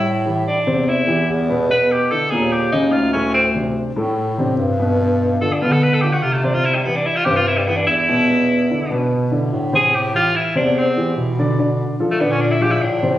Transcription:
<<
  \new Staff \with { instrumentName = "Tenor saxophone" } { \time 4/4 \key a \minor \tempo 4 = 146 r4 d'4 e'4 r4 | b'8 g'8 a'8 gis'8 g'8 dis'8 f'8 cis'8 | c'8 r2. r8 | r4 a'16 d'16 f'16 a'16 b'16 a'16 g'16 fis'16 f'16 a16 d'16 f'16 |
e'16 g16 b16 d'16 e'16 f'16 g'16 f'16 e'16 g16 b16 d'16 e'4~ | e'2 r4. gis'8 | g'8 f'8 e'8 d'8 c'4 r4 | r4 r16 a16 b16 cis'16 d'16 e'16 g'16 e'16 d'8. r16 | }
  \new Staff \with { instrumentName = "Grand piano" } { \time 4/4 \key a \minor r8 <e e' g'>4 <c c' c''>4 <e e' g'>4 <b, b b'>8 | <b, b b'>4 <d d' e'>8 <bes, bes bes'>4 <cis cis' dis'>4 <a, a a'>8~ | <a, a a'>8 <c c' d'>4 <a, a a'>4 <c c' d'>4 <b, b b'>8 | <b, b b'>4 <d d' f'>8 <b, b b'>4 <d d' f'>4 <c c' c''>8~ |
<c c' c''>8 <e e' g'>4 <c c' c''>4 <e e' g'>4 <b, b b'>8 | <b, b b'>4 <d d' e'>8 <b, b b'>4 <d d' e'>4 <c c' c''>8~ | <c c' c''>8 <e e' g'>4 <c c' c''>4 <e e' g'>4 <d d' d''>8 | <d d' d''>4 <f f' a'>8 <d d' d''>4 <f f' aes'>4 <c c' c''>8 | }
  \new Staff \with { instrumentName = "Bass clarinet" } { \clef bass \time 4/4 \key a \minor a,4. e,4. e,4~ | e,4 r8 dis,4. d,4~ | d,4. a,4. g,4~ | g,4. d4. c4~ |
c4 r8 g,4. e,4~ | e,4. b,4. a,4~ | a,4. e,4. b,4~ | b,4 r8 bes,4. a,4 | }
>>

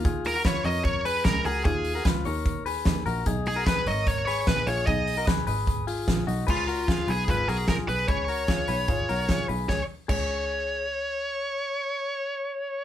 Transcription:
<<
  \new Staff \with { instrumentName = "Lead electric guitar" } { \time 4/4 \key des \mixolydian \tempo 4 = 149 r8 bes'8 des''8 ees''8 des''8 ces''8 bes'8 aes'8 | aes'4 r2. | r8 aes'8 ces''8 ees''8 des''8 des''8 ces''8 des''8 | ees''4 r2. |
f'4. aes'8 ces''8 aes'8 bes'8 ces''8 | des''2.~ des''8 r8 | des''8 r8 des''2.~ | des''1 | }
  \new Staff \with { instrumentName = "Clean electric guitar" } { \time 4/4 \key des \mixolydian <f' aes'>8. <ges' bes'>16 <f' ces''>8 <bes' des''>4 <aes' ces''>4 <ges' bes'>8 | <f' aes'>8. <ges' bes'>16 <f' ces''>8 <bes' des''>4 <aes' ces''>4 <ges' bes'>8 | <ees' aes'>8. <ges' bes'>16 <aes' ces''>8 <bes' des''>4 <aes' ces''>4 <f' aes'>8 | <ees' aes'>8. <ges' bes'>16 <aes' ces''>8 <aes' ces''>4 <f' aes'>4 <ees' ges'>8 |
<aes' ces''>8 <ges' bes'>8 <f' aes'>8 <aes' ces''>8 <f' aes'>8 <ges' bes'>8 <f' aes'>8 <aes' ces''>8 | <aes' ces''>8 <ges' bes'>8 <f' aes'>8 <aes' ces''>8 <f' aes'>8 <ges' bes'>8 <f' aes'>8 <aes' ces''>8 | aes'8 r8 aes'2 r4 | r1 | }
  \new Staff \with { instrumentName = "Picked electric bass" } { \clef bass \time 4/4 \key des \mixolydian ees,4. f,4. des,8 des,8 | ees,4 des,8 ees,4. ees,8 bes,,8 | ces,4. aes,,4. bes,,8 bes,,8 | ces,4. aes,,4. bes,,8 ces,8 |
des,4. ces,8 aes,,8 ces,4 ces,8 | des,4. ces,8 aes,,8 ces,4 ces,8 | des,8 r8 des,2.~ | des,1 | }
  \new DrumStaff \with { instrumentName = "Drums" } \drummode { \time 4/4 <hh bd>8 hho8 <hh bd sn>8 hho8 <hh bd>8 hho8 <hh bd sn>8 hho8 | <hh bd>8 hho8 <hh bd sn>8 hho8 <hh bd>8 hho8 <hh bd sn>8 hho8 | <hh bd>8 hho8 <hh bd sn>8 hho8 <hh bd>8 hho8 <hh bd sn>8 hho8 | <hh bd>8 hho8 <hh bd sn>8 hho8 <hh bd>8 hho8 <hh bd sn>8 hho8 |
<cymc bd>8 hho8 <hh bd sn>8 hho8 <hh bd>8 hho8 <hh bd sn>8 hho8 | <hh bd>8 hho8 <hh bd sn>8 hho8 <hh bd>8 hho8 <hh bd sn>8 hho8 | <bd sn>4 <cymc bd>4 r4 r4 | r4 r4 r4 r4 | }
>>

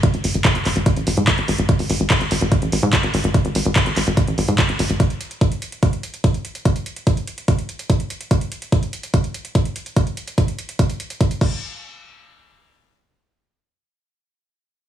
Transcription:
<<
  \new Staff \with { instrumentName = "Analog synth bass" } { \clef bass \time 4/4 \tempo 4 = 145 r16 aes,,16 aes,,16 aes,,16 r16 aes,,16 aes,,16 aes,,16 r16 a,,16 aes,,16 aes,16 r16 aes,,16 aes,,16 aes,,16 | r16 aes,,16 aes,,16 aes,,16 r16 aes,,16 aes,,16 aes,,16 r16 a,,16 aes,,16 aes,16 r16 aes,,16 aes,,16 aes,,16 | r16 aes,,16 aes,,16 aes,,16 r16 aes,,16 aes,,16 aes,,16 r16 a,,16 aes,,16 aes,16 r16 aes,,16 aes,,16 aes,,16 | r1 |
r1 | r1 | r1 | r1 |
r1 | }
  \new DrumStaff \with { instrumentName = "Drums" } \drummode { \time 4/4 <hh bd>16 hh16 hho16 hh16 <hc hh bd>16 hh16 <hc hho>16 hh16 <hh bd>16 hh16 hho16 hh16 <hc hh bd>16 hh16 hho16 hh16 | <hh bd>16 hho16 hho16 hh16 <hc hh bd>16 hh16 hho16 hh16 <hh bd>16 hh16 hho16 hh16 <hc hh bd>16 hh16 hho16 hh16 | <hh bd>16 hh16 hho16 hh16 <hc hh bd>16 hh16 <hc hho>16 hh16 <hh bd>16 hh16 hho16 hh16 <hc hh bd>16 hh16 hho16 hh16 | <hh bd>16 hh16 hh16 hh16 <hh bd>16 hh16 hh16 hh16 <hh bd>16 hh16 hh16 hh16 <hh bd>16 hh16 hh16 hh16 |
<hh bd>16 hh16 hh16 hh16 <hh bd>16 hh16 hh16 hh16 <hh bd>16 hh16 hh16 hh16 <hh bd>16 hh16 hh16 hh16 | <hh bd>16 hh16 hh16 hh16 <hh bd>16 hh16 hh16 hh16 <hh bd>16 hh16 hh16 hh16 <hh bd>16 hh16 hh16 hh16 | <hh bd>16 hh16 hh16 hh16 <hh bd>16 hh16 hh16 hh16 <hh bd>16 hh16 hh16 hh16 <hh bd>16 hh16 <cymc bd>8 | r4 r4 r4 r4 |
r4 r4 r4 r4 | }
>>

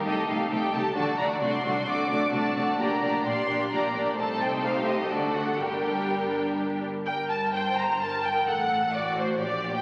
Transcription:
<<
  \new Staff \with { instrumentName = "Violin section" } { \time 3/4 \key g \minor \tempo 4 = 129 ees''8 f''8 g''8 a''8 a''8 bes''8 | c'''4 d'''4 a''4 | bes''4 c'''4 bes''8 r8 | a''8 g''8 f''8 ees''8 d''8 fis''8 |
g''2~ g''8 r8 | g''8 a''8 g''8 bes''8 a''8 g''8 | fis''4 d''8 c''8 d''8. g''16 | }
  \new Staff \with { instrumentName = "Violin section" } { \time 3/4 \key g \minor << { a'8 a'8 a'8 a'8 d''8 d''8 | d''8 d''8 d''8 d''8 d''8 d''8 | d''8 d''8 d''8 d''8 d''8 d''8 | c''2 a'4 |
bes'2~ bes'8 r8 | g''8 a''8 g''8 bes''8 a''8 g''8 | fis''4 d''8 c''8 d''8. g''16 | } \\ { g'8 g'8 g'8 g'8 fis'8 fis'8 | fis'8 fis'8 fis'8 fis'8 fis'8 fis'8 | g'8 g'8 g'8 g'8 g'8 g'8 | a'4 g'4 fis'4 |
g'2~ g'8 r8 | r2. | r2. | } >> }
  \new Staff \with { instrumentName = "Viola section" } { \time 3/4 \key g \minor <a ees'>8 <a ees'>8 <a ees'>8 <a ees'>8 <a d'>8 <a d'>8 | <a d'>8 <a d'>8 <a d'>8 <a d'>8 <a d'>8 <a d'>8 | <bes d'>8 <bes d'>8 <bes d'>8 <bes d'>8 <bes d'>8 <bes d'>8 | <a ees'>2 <a d'>4 |
<g d'>2~ <g d'>8 r8 | bes'4 c''4 bes'4 | a'4 fis'4 g'4 | }
  \new Staff \with { instrumentName = "Cello section" } { \clef bass \time 3/4 \key g \minor c8 c8 c8 c8 d8 d8 | c8 c8 c8 c8 c8 c8 | bes,8 bes,8 bes,8 bes,8 bes,8 bes,8 | c2 d4 |
g,2~ g,8 r8 | g,2. | a,2 bes,4 | }
  \new Staff \with { instrumentName = "Double bass section" } { \clef bass \time 3/4 \key g \minor c,8 c,8 c,8 c,8 d,8 d,8 | c,8 c,8 c,8 c,8 c,8 c,8 | bes,,8 bes,,8 bes,,8 bes,,8 bes,,8 bes,,8 | c,2 d,4 |
g,,2~ g,,8 r8 | g,,2. | a,,2 bes,,4 | }
>>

